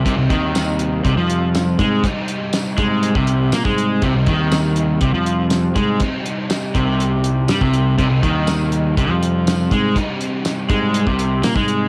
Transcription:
<<
  \new Staff \with { instrumentName = "Overdriven electric guitar" } { \time 4/4 \key c \minor \tempo 4 = 121 <c g c' ees'>1 | <c g c' ees'>1 | <c g c' ees'>1 | <c g c' ees'>1 |
<c g c' ees'>1 | <c g c' ees'>1 | }
  \new Staff \with { instrumentName = "Overdriven electric guitar" } { \clef bass \time 4/4 \key c \minor c16 c16 ees4. c16 f4~ f16 aes8 | r4. aes8. c8. bes16 aes8. | c16 c16 ees4. c16 f4~ f16 aes8 | r4. c4. g16 c8. |
c16 c16 ees4. c16 f4~ f16 aes8 | r4. aes8. c8. bes16 aes8. | }
  \new Staff \with { instrumentName = "Picked electric bass" } { \clef bass \time 4/4 \key c \minor c,16 c,16 ees,4. c,16 f,4~ f,16 aes,8 | r4. aes,8. c,8. bes,16 aes,8. | c,16 c,16 ees,4. c,16 f,4~ f,16 aes,8 | r4. c,4. g,16 c,8. |
c,16 c,16 ees,4. c,16 f,4~ f,16 aes,8 | r4. aes,8. c,8. bes,16 aes,8. | }
  \new DrumStaff \with { instrumentName = "Drums" } \drummode { \time 4/4 <hh bd>8 <hh bd>8 <hh sn tamb>8 hh8 <hh bd>8 hh8 <hh sn tamb>8 <hh bd>8 | <hh bd>8 hh8 <hh sn tamb>8 <hh bd>8 hh16 bd16 hh8 <hh sn tamb>16 bd16 hh8 | <hh bd>8 <hh bd>8 <hh sn tamb>8 hh8 <hh bd>8 hh8 <hh sn tamb>8 <hh bd>8 | <hh bd>8 hh8 <hh sn tamb>8 <hh bd>8 hh8 hh8 <hh sn tamb>16 bd16 hh8 |
<hh bd>8 <hh bd>8 <hh sn tamb>8 hh8 <hh bd>8 hh8 <hh sn tamb>8 <hh bd>8 | <hh bd>8 hh8 <hh sn tamb>8 <hh bd>8 hh16 bd16 hh8 <hh sn tamb>16 bd16 hh8 | }
>>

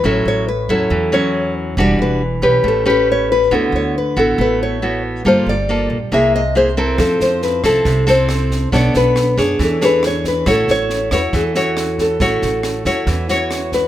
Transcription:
<<
  \new Staff \with { instrumentName = "Nylon-string guitar" } { \time 4/4 \key a \major \tempo 4 = 138 a'8 cis''8 b'8 a'4 cis''4 r8 | d''8 b'4 r8 a'8 b'8 cis''8 b'8 | a'8 cis''8 b'8 a'8 b'8 cis''4 r8 | c''8 d''4 r8 e''8 dis''8 c''8 bes'8 |
a'8 c''8 b'8 a'4 c''4 r8 | d''8 b'4 r8 a'8 b'8 cis''8 b'8 | a'8 cis''4 b'8 a'4. a'8~ | a'2~ a'8 cis''4 b'8 | }
  \new Staff \with { instrumentName = "Nylon-string guitar" } { \time 4/4 \key a \major << { <fis cis' e'>4 r8 <fis cis' e'>4 <fis cis' e'>4. | <g d' fis'>4 r8 <cis' g' b'>4 <cis' g' b'>4. | <b e' fis'>4 r8 <b e' fis'>4. <b e' fis'>4 | <bes f' a'>8 r8 <bes f' a'>8 r8 <bes e' gis'>8 r8 <bes e' gis'>8 <c' e' a'>8~ |
<c' e' a'>4. <c' e' a'>4 <c' e' a'>4. | <d' a' cis''>4. <d' gis' cis''>4 <d' gis' cis''>4. | <e' fis' cis''>4. <e' fis' cis''>4 <e' fis' cis''>4. | <e' fis' cis''>4. <e' fis' cis''>4 <e' fis' cis''>4. | } \\ { a,2 e2 | e2 a2 | d2 a2 | g2 c2 |
f2 c2 | b2 e2 | a2 e2 | a2 e2 | } >> }
  \new Staff \with { instrumentName = "Upright bass" } { \clef bass \time 4/4 \key a \major a,,8 a,,4 e,8 e,2 | e,,8 e,,4 b,,8 a,,2 | d,8 d,4 a,,8 a,,2 | g,,8 g,,4 bes,,8 c,2 |
f,8 f,4 c,8 c,2 | b,,8 b,,4 fis,8 e,2 | a,,8 a,,4 e,8 e,2 | a,,8 a,,4 e,8 e,2 | }
  \new DrumStaff \with { instrumentName = "Drums" } \drummode { \time 4/4 r4 r4 r4 r4 | r4 r4 r4 r4 | r4 r4 r4 r4 | r4 r4 r4 r4 |
<bd ss sn>8 sn8 sn8 <bd ss sn>8 <bd sn>8 sn8 <ss sn>8 <bd sn>8 | <bd sn>8 sn8 <ss sn>8 <bd sn>8 <bd sn>8 sn8 <ss sn>8 <bd sn>8 | <bd ss sn>8 sn8 sn8 <bd ss sn>8 <bd sn>8 sn8 <ss sn>8 <bd sn>8 | <bd sn>8 sn8 <ss sn>8 <bd sn>8 <bd sn>8 sn8 <ss sn>8 <bd sn>8 | }
>>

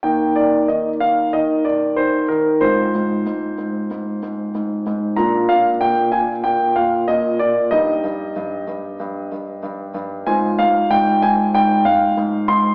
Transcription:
<<
  \new Staff \with { instrumentName = "Grand piano" } { \time 4/4 \key ees \major \tempo 4 = 94 << { g''8 d''8 ees''8 f''8 ees''8 d''8 c''8 bes'8 | c''1 | bes''8 f''8 g''8 aes''8 g''8 f''8 ees''8 d''8 | ees''1 |
aes''8 f''8 g''8 aes''8 g''8 f''4 c'''8 | } \\ { <bes ees'>1 | <c' f'>1 | <d' f'>1 | <ees' g'>1 |
<c' f'>1 | } >> }
  \new Staff \with { instrumentName = "Grand piano" } { \clef bass \time 4/4 \key ees \major ees8 ees8 ees8 ees8 ees8 ees8 ees8 ees8 | aes,8 aes,8 aes,8 aes,8 aes,8 aes,8 aes,8 aes,8 | bes,8 bes,8 bes,8 bes,8 bes,8 bes,8 bes,8 bes,8 | g,8 g,8 g,8 g,8 g,8 g,8 g,8 g,8 |
aes,8 aes,8 aes,8 aes,8 aes,8 aes,8 aes,8 aes,8 | }
>>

